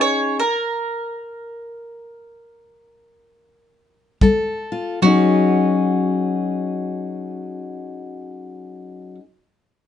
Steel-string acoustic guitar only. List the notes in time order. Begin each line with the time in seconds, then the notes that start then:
Already playing: C#4 D#4 G#4
4.22 G3 A4
4.72 F4
5.02 F#3 C#4 D#4
5.07 G#4